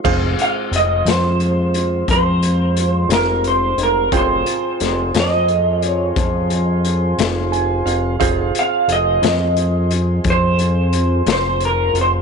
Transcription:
0.04 0.36 F1 loud
0.04 4.08 G#3 medium
0.04 4.09 C4 medium
0.04 4.08 F4 medium
0.04 4.08 G#4 soft
0.04 4.08 C5 medium
0.04 4.08 C5 soft
0.04 4.08 F5 medium
0.04 kick loud
0.04 crash medium
0.39 0.51 F5 medium
0.39 closed hi-hat soft
0.71 1.03 F1 medium
0.71 closed hi-hat medium
0.76 1.09 D#5 medium
1.05 2.04 F2 medium
1.05 2.10 C5 medium
1.05 snare medium
1.05 closed hi-hat medium
1.40 closed hi-hat soft
1.74 closed hi-hat soft
2.08 3.06 F2 medium
2.08 3.08 C5 medium
2.08 kick medium
2.08 closed hi-hat medium
2.42 closed hi-hat medium
2.77 closed hi-hat medium
3.09 3.74 F1 medium
3.09 snare medium
3.09 closed hi-hat medium
3.13 3.44 A#4 medium
3.44 3.81 C5 medium
3.44 closed hi-hat medium
3.78 4.09 F1 medium
3.78 closed hi-hat soft
3.83 4.16 A#4 medium
4.11 4.43 F1 loud
4.11 4.46 F#3 medium
4.11 4.46 A3 medium
4.11 4.46 C#4 medium
4.11 8.16 F4 soft
4.11 8.16 G#4 soft
4.11 4.44 C5 medium
4.11 8.16 C5 soft
4.11 8.16 G5 soft
4.11 kick medium
4.11 closed hi-hat medium
4.17 5.19 C5 medium
4.46 8.16 C4 medium
4.46 8.16 F4 medium
4.46 8.16 G#4 medium
4.46 8.16 C5 soft
4.46 closed hi-hat medium
4.80 5.12 F1 medium
4.80 snare soft
4.80 closed hi-hat medium
5.14 6.12 F2 medium
5.14 snare loud
5.14 closed hi-hat medium
5.20 5.87 D#5 medium
5.48 closed hi-hat soft
5.82 closed hi-hat soft
5.87 6.15 C#5 medium
6.16 7.14 F2 medium
6.16 kick medium
6.16 closed hi-hat medium
6.50 closed hi-hat soft
6.85 closed hi-hat soft
7.18 7.82 F1 medium
7.18 snare medium
7.18 closed hi-hat medium
7.52 7.84 G#5 soft
7.52 closed hi-hat medium
7.86 8.17 F1 medium
7.86 8.17 F5 soft
7.86 closed hi-hat soft
8.19 8.52 F1 loud
8.19 12.22 C4 medium
8.19 12.22 F4 medium
8.19 12.22 F4 soft
8.19 12.22 G#4 medium
8.19 12.22 G#4 soft
8.19 12.22 C5 medium
8.19 12.22 C5 soft
8.19 12.22 F5 medium
8.19 kick medium
8.19 closed hi-hat medium
8.55 closed hi-hat medium
8.59 8.92 F5 medium
8.88 9.19 F1 medium
8.88 closed hi-hat medium
8.92 9.88 D#5 medium
9.22 10.20 F2 medium
9.22 snare medium
9.22 closed hi-hat medium
9.57 closed hi-hat medium
9.91 closed hi-hat medium
10.24 11.22 F2 medium
10.24 kick medium
10.24 closed hi-hat medium
10.30 11.31 C5 medium
10.59 closed hi-hat soft
10.93 closed hi-hat medium
11.26 11.90 F1 medium
11.26 snare loud
11.26 closed hi-hat medium
11.32 11.64 C5 medium
11.60 closed hi-hat medium
11.65 11.94 A#4 medium
11.94 12.22 F1 medium
11.94 closed hi-hat soft
12.01 12.09 C5 medium

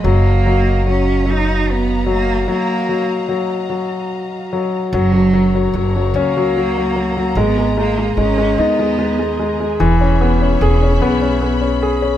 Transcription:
0.00 4.88 F#4 medium
0.00 4.88 D#5 medium
0.00 4.88 F5 medium
0.00 4.88 A#5 medium
0.04 2.44 F#1 loud
0.04 0.45 F#3 medium
0.04 0.87 A#3 loud
0.46 0.85 F#3 medium
0.87 1.24 F#3 medium
0.87 1.31 C#4 medium
1.26 2.05 F#3 medium
1.26 1.71 D#4 loud
1.70 2.09 B3 loud
2.06 2.46 F#3 medium
2.11 2.47 A#3 medium
2.48 2.88 F#3 medium
2.48 3.37 A#3 loud
2.89 3.27 F#3 medium
3.29 3.68 F#3 medium
3.70 4.51 F#3 soft
4.53 4.92 F#3 medium
4.92 5.70 F#1 loud
4.92 5.11 F#3 medium
4.92 5.71 F#3 loud
4.92 7.34 F#4 medium
4.92 7.33 A#4 medium
4.92 7.34 C#5 medium
4.92 9.76 A#5 medium
5.13 5.32 F#3 soft
5.34 5.54 F#3 medium
5.55 5.74 F#3 soft
5.74 6.12 F#1 medium
5.74 5.95 F#3 medium
5.96 6.36 F#3 medium
6.14 7.32 C#2 medium
6.14 7.39 A#3 medium
6.14 7.33 C#4 medium
6.37 6.56 F#3 medium
6.57 6.76 F#3 medium
6.78 6.95 F#3 medium
6.96 7.16 F#3 medium
7.17 7.36 F#3 medium
7.34 8.13 G#1 loud
7.34 7.56 G#3 medium
7.34 7.77 B3 loud
7.34 12.17 G#4 medium
7.34 9.77 A#4 medium
7.34 9.77 D#5 medium
7.58 7.76 G#3 medium
7.77 7.97 G#3 medium
7.77 8.16 A#3 medium
7.98 8.16 G#3 soft
8.17 8.55 G#1 medium
8.17 8.36 G#3 medium
8.17 8.61 C#4 loud
8.38 8.78 G#3 medium
8.58 9.76 D#2 medium
8.58 9.50 B3 loud
8.58 9.77 D#4 medium
8.79 8.97 G#3 soft
8.99 9.18 G#3 medium
9.19 9.38 G#3 medium
9.39 9.59 G#3 medium
9.60 9.80 G#3 medium
9.79 10.57 E1 medium
9.79 12.17 E3 medium
9.79 12.17 C#5 medium
9.79 12.17 E5 medium
9.79 12.17 B5 medium
10.01 10.40 C#4 medium
10.21 11.00 B3 medium
10.42 10.81 C#4 soft
10.61 10.99 E1 loud
10.61 11.81 G#4 medium
10.82 11.20 C#4 medium
11.01 12.17 B1 medium
11.01 11.40 B3 medium
11.22 11.60 C#4 medium
11.41 12.17 B3 soft
11.62 12.01 C#4 medium
11.83 12.17 G#4 medium
12.02 12.17 C#4 medium

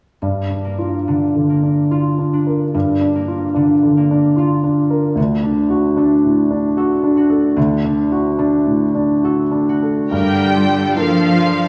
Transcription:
0.22 2.73 G2 soft
0.22 2.70 G2 soft
0.50 0.96 D4 soft
0.65 1.48 A#3 soft
0.79 1.24 F4 soft
1.08 3.54 D3 soft
1.08 1.53 D4 soft
1.35 1.80 D3 soft
1.49 3.14 A#3 soft
1.63 2.08 D4 soft
1.91 2.36 F4 soft
1.91 4.37 F4 soft
2.18 2.63 D4 soft
2.33 6.23 D4 soft
2.47 2.91 A#4 soft
2.74 5.13 G2 soft
2.74 5.21 G2 soft
3.01 3.45 D4 soft
3.15 3.96 A#3 soft
3.28 3.72 F4 soft
3.54 5.16 D3 soft
3.54 3.99 D4 soft
3.83 4.27 D3 soft
3.97 5.21 A#3 soft
4.11 4.54 D4 soft
4.36 4.80 F4 soft
4.36 5.21 F4 soft
4.64 5.06 D4 soft
4.90 5.17 A#4 soft
5.16 7.52 D2 soft
5.16 7.55 D3 soft
5.43 5.86 D4 soft
5.70 6.13 F#4 soft
5.97 8.38 A3 soft
5.97 6.40 D4 soft
6.24 6.66 A2 soft
6.50 6.93 D4 soft
6.77 7.19 F#4 soft
6.77 9.23 A4 soft
7.03 7.46 D4 soft
7.17 9.68 F#4 soft
7.30 7.73 A4 soft
7.56 10.09 D2 soft
7.56 10.16 D3 soft
7.85 8.28 D4 soft
8.12 8.56 F#4 soft
8.38 10.16 A3 soft
8.38 8.84 D4 soft
8.67 9.13 A2 soft
8.95 9.42 D4 soft
9.23 9.71 F#4 soft
9.23 10.17 A4 soft
9.51 10.00 D4 soft
9.69 10.16 F#4 soft
9.82 10.12 A4 soft
10.11 10.94 G2 soft
10.11 11.68 G2 soft
10.11 10.93 D3 soft
10.11 10.94 G3 soft
10.11 10.52 A#4 soft
10.11 10.93 G5 soft
10.55 11.37 F4 soft
10.55 11.68 A4 soft
10.96 11.68 F3 soft
10.96 11.68 A#3 soft
10.96 11.68 D4 soft
10.96 11.68 F4 soft
10.96 11.68 A#4 soft
10.96 11.68 F5 soft
11.39 11.68 F4 soft

